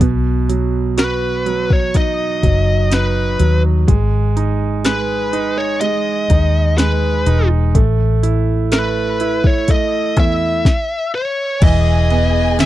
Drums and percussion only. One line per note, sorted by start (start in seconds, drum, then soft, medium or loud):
0.01 kick medium
0.01 closed hi-hat medium
0.50 closed hi-hat medium
0.98 snare medium
0.98 closed hi-hat medium
1.46 closed hi-hat medium
1.70 kick medium
1.94 kick medium
1.94 closed hi-hat medium
2.43 kick medium
2.43 closed hi-hat medium
2.92 snare medium
2.92 closed hi-hat medium
3.39 closed hi-hat medium
3.88 kick loud
3.88 closed hi-hat medium
4.37 closed hi-hat medium
4.85 snare loud
4.85 closed hi-hat medium
5.33 closed hi-hat soft
5.81 closed hi-hat medium
6.30 kick medium
6.30 closed hi-hat medium
6.78 snare medium
6.78 closed hi-hat loud
7.26 closed hi-hat medium
7.75 kick loud
7.75 closed hi-hat medium
8.23 closed hi-hat medium
8.72 snare medium
8.72 closed hi-hat medium
9.20 closed hi-hat medium
9.44 kick medium
9.68 kick medium
9.68 closed hi-hat medium
10.17 kick medium
10.17 closed hi-hat medium
10.65 kick loud
10.65 snare medium
11.62 kick loud
11.62 crash medium
11.62 ride medium
12.10 ride medium
12.59 snare loud
12.59 ride medium